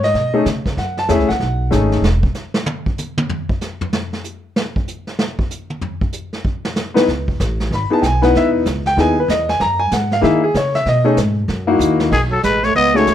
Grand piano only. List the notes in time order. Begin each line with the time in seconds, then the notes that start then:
0.04 D#5
0.34 A3 C#4 D#4 G#4
0.79 F#5
0.99 A5
1.08 A3 C#4 E4 G#4 E5
1.29 F#5
1.71 A3 C#4 D#4 G#4
6.94 B3 D#4 E4 B4
7.74 B5
7.90 B3 D#4 E4 G#4 A5
8.02 G5
8.06 G#5
8.22 B3 D#4 E4 B4 F#5
8.37 E5
8.87 G5
8.98 B3 D#4 E4 G#4 G#5
9.20 B4
9.30 D#5
9.49 G#5
9.61 A#5
9.79 G#5
9.93 F#5
10.13 F5
10.21 A#3 D#4 E4 G#4 E5
10.44 G#4
10.57 C#5
10.75 E5
10.89 D#5
11.04 A3 C#4 D#4 G#4
11.67 A#3 D#4 E4 F#4
12.94 A3 C#4 D#4 F#4 G#4